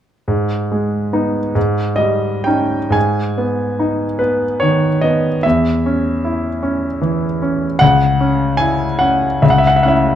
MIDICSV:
0, 0, Header, 1, 2, 480
1, 0, Start_track
1, 0, Key_signature, 5, "minor"
1, 0, Tempo, 859599
1, 156, Time_signature, 3, 2, 24, 8
1, 1112, Tempo, 964630
1, 1592, Tempo, 847458
1, 2072, Tempo, 820793
1, 3032, Tempo, 790514
1, 4952, Tempo, 839161
1, 5836, End_track
2, 0, Start_track
2, 0, Title_t, "Grand piano"
2, 0, Program_c, 0, 0
2, 154, Note_on_c, 0, 44, 40
2, 262, Control_c, 0, 64, 127
2, 400, Note_on_c, 0, 56, 34
2, 630, Note_on_c, 0, 59, 33
2, 633, Note_on_c, 0, 63, 39
2, 777, Note_off_c, 0, 56, 0
2, 844, Note_off_c, 0, 59, 0
2, 846, Note_off_c, 0, 63, 0
2, 848, Note_off_c, 0, 44, 0
2, 866, Note_on_c, 0, 44, 47
2, 880, Control_c, 0, 64, 0
2, 983, Control_c, 0, 64, 127
2, 1093, Note_on_c, 0, 75, 62
2, 1107, Note_on_c, 0, 55, 42
2, 1335, Note_on_c, 0, 79, 49
2, 1344, Note_off_c, 0, 75, 0
2, 1346, Note_on_c, 0, 61, 31
2, 1349, Note_on_c, 0, 63, 35
2, 1498, Note_off_c, 0, 55, 0
2, 1558, Note_off_c, 0, 44, 0
2, 1566, Note_on_c, 0, 44, 46
2, 1569, Note_off_c, 0, 61, 0
2, 1570, Note_off_c, 0, 63, 0
2, 1575, Note_on_c, 0, 80, 61
2, 1583, Note_off_c, 0, 79, 0
2, 1601, Control_c, 0, 64, 0
2, 1717, Control_c, 0, 64, 127
2, 1831, Note_on_c, 0, 59, 36
2, 2067, Note_on_c, 0, 63, 37
2, 2210, Note_off_c, 0, 59, 0
2, 2297, Note_on_c, 0, 71, 49
2, 2299, Note_off_c, 0, 80, 0
2, 2310, Note_on_c, 0, 59, 34
2, 2450, Note_off_c, 0, 63, 0
2, 2536, Note_on_c, 0, 73, 61
2, 2543, Note_off_c, 0, 71, 0
2, 2551, Note_on_c, 0, 51, 34
2, 2695, Note_off_c, 0, 59, 0
2, 2780, Note_on_c, 0, 75, 54
2, 2784, Note_off_c, 0, 73, 0
2, 2795, Note_on_c, 0, 59, 33
2, 2937, Note_off_c, 0, 51, 0
2, 2993, Note_off_c, 0, 44, 0
2, 3024, Note_on_c, 0, 76, 68
2, 3026, Note_off_c, 0, 75, 0
2, 3034, Note_off_c, 0, 59, 0
2, 3040, Note_on_c, 0, 40, 46
2, 3042, Control_c, 0, 64, 0
2, 3145, Control_c, 0, 64, 127
2, 3283, Note_on_c, 0, 61, 41
2, 3518, Note_on_c, 0, 64, 44
2, 3651, Note_off_c, 0, 61, 0
2, 3749, Note_on_c, 0, 61, 41
2, 3889, Note_off_c, 0, 64, 0
2, 3977, Note_off_c, 0, 76, 0
2, 3985, Note_on_c, 0, 52, 41
2, 4131, Note_off_c, 0, 61, 0
2, 4232, Note_on_c, 0, 61, 39
2, 4374, Note_off_c, 0, 52, 0
2, 4448, Note_off_c, 0, 40, 0
2, 4456, Note_on_c, 0, 78, 83
2, 4470, Note_on_c, 0, 37, 53
2, 4472, Note_off_c, 0, 61, 0
2, 4480, Control_c, 0, 64, 0
2, 4576, Control_c, 0, 64, 127
2, 4708, Note_on_c, 0, 61, 41
2, 4932, Note_on_c, 0, 80, 65
2, 4946, Note_off_c, 0, 78, 0
2, 4949, Note_on_c, 0, 64, 41
2, 5092, Note_off_c, 0, 61, 0
2, 5169, Note_on_c, 0, 78, 64
2, 5177, Note_off_c, 0, 80, 0
2, 5181, Note_on_c, 0, 61, 37
2, 5327, Note_off_c, 0, 64, 0
2, 5402, Note_off_c, 0, 37, 0
2, 5416, Note_off_c, 0, 78, 0
2, 5418, Note_on_c, 0, 76, 53
2, 5421, Note_on_c, 0, 37, 55
2, 5422, Note_off_c, 0, 61, 0
2, 5433, Control_c, 0, 64, 0
2, 5463, Note_on_c, 0, 78, 59
2, 5468, Note_off_c, 0, 76, 0
2, 5510, Note_on_c, 0, 76, 55
2, 5514, Note_off_c, 0, 78, 0
2, 5526, Control_c, 0, 64, 127
2, 5561, Note_off_c, 0, 76, 0
2, 5562, Note_on_c, 0, 78, 56
2, 5610, Note_off_c, 0, 78, 0
2, 5613, Note_on_c, 0, 76, 52
2, 5652, Note_on_c, 0, 78, 49
2, 5660, Note_off_c, 0, 76, 0
2, 5660, Note_on_c, 0, 61, 30
2, 5660, Note_on_c, 0, 64, 37
2, 5681, Note_on_c, 0, 76, 57
2, 5703, Note_off_c, 0, 78, 0
2, 5836, Note_off_c, 0, 37, 0
2, 5836, Note_off_c, 0, 61, 0
2, 5836, Note_off_c, 0, 64, 0
2, 5836, Note_off_c, 0, 76, 0
2, 5836, End_track
0, 0, End_of_file